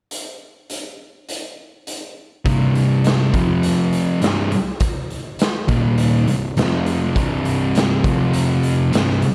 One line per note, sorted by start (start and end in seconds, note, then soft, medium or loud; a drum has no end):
0.11 closed hi-hat medium
0.70 closed hi-hat medium
1.29 closed hi-hat medium
1.87 closed hi-hat medium
2.45 3.33 C2 medium
2.45 3.33 G2 loud
2.45 3.33 C3 loud
2.45 kick loud
2.45 closed hi-hat medium
2.75 closed hi-hat medium
3.04 snare loud
3.04 closed hi-hat medium
3.34 4.20 F2 medium
3.34 4.21 C3 medium
3.34 4.22 F3 loud
3.34 kick loud
3.34 closed hi-hat medium
3.63 closed hi-hat medium
3.93 closed hi-hat medium
4.21 4.50 C2 medium
4.21 4.51 G2 medium
4.21 4.51 C3 medium
4.21 snare loud
4.21 closed hi-hat medium
4.52 closed hi-hat medium
4.80 kick loud
4.80 closed hi-hat medium
5.10 closed hi-hat medium
5.39 snare loud
5.39 closed hi-hat medium
5.68 6.26 D#2 medium
5.68 6.27 A#2 medium
5.68 6.27 D#3 loud
5.68 kick loud
5.68 closed hi-hat medium
5.98 closed hi-hat medium
6.27 6.51 C2 medium
6.27 6.51 G2 medium
6.27 closed hi-hat medium
6.57 7.15 F2 medium
6.57 7.15 C3 medium
6.57 7.16 F3 medium
6.57 snare loud
6.57 closed hi-hat medium
6.86 closed hi-hat medium
7.15 8.03 C2 medium
7.15 8.03 G2 loud
7.15 8.04 C3 loud
7.15 kick loud
7.15 closed hi-hat medium
7.45 closed hi-hat medium
7.75 snare loud
7.75 closed hi-hat medium
8.04 8.92 F2 medium
8.04 8.92 C3 medium
8.04 8.92 F3 loud
8.04 kick loud
8.04 closed hi-hat medium
8.33 closed hi-hat medium
8.63 closed hi-hat medium
8.92 9.21 C2 medium
8.92 9.21 G2 medium
8.92 9.21 C3 loud
8.92 snare loud
8.92 closed hi-hat medium
9.10 snare soft
9.22 closed hi-hat medium